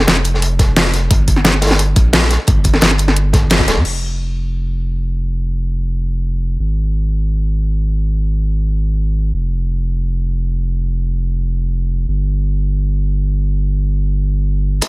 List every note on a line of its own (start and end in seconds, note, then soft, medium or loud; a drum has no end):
0.07 1.09 F1 loud
0.07 snare loud
0.07 closed hi-hat medium
0.17 snare soft
0.24 closed hi-hat medium
0.34 snare soft
0.42 closed hi-hat medium
0.59 kick loud
0.59 snare soft
0.59 closed hi-hat medium
0.76 snare loud
0.76 closed hi-hat medium
0.94 snare soft
0.94 closed hi-hat medium
1.11 1.95 G1 loud
1.11 kick loud
1.11 closed hi-hat medium
1.28 kick medium
1.28 closed hi-hat medium
1.36 snare soft
1.45 snare loud
1.45 closed hi-hat loud
1.45 closed hi-hat medium
1.54 snare soft
1.62 snare medium
1.62 closed hi-hat medium
1.67 snare medium
1.67 closed hi-hat medium
1.71 snare loud
1.71 snare medium
1.71 closed hi-hat medium
1.79 closed hi-hat medium
1.96 2.38 A#1 medium
1.96 kick loud
1.96 closed hi-hat medium
2.13 snare loud
2.13 closed hi-hat medium
2.22 snare soft
2.30 snare soft
2.30 closed hi-hat medium
2.47 2.81 G1 loud
2.47 kick loud
2.47 closed hi-hat medium
2.47 closed hi-hat loud
2.64 kick medium
2.64 closed hi-hat medium
2.74 snare soft
2.81 3.67 G1 loud
2.81 snare loud
2.81 closed hi-hat loud
2.91 snare soft
2.98 closed hi-hat medium
3.08 snare soft
3.08 snare medium
3.16 closed hi-hat medium
3.33 kick loud
3.33 snare soft
3.33 closed hi-hat medium
3.50 snare loud
3.50 closed hi-hat medium
3.50 closed hi-hat loud
3.59 kick medium
3.68 3.78 D1 medium
3.68 snare loud
3.68 closed hi-hat medium
3.76 3.84 G2 loud
3.85 6.58 F1 medium
3.85 crash medium
6.59 9.32 G#1 medium
9.34 12.06 F1 medium
12.08 14.80 G1 medium
14.81 kick medium
14.81 closed hi-hat medium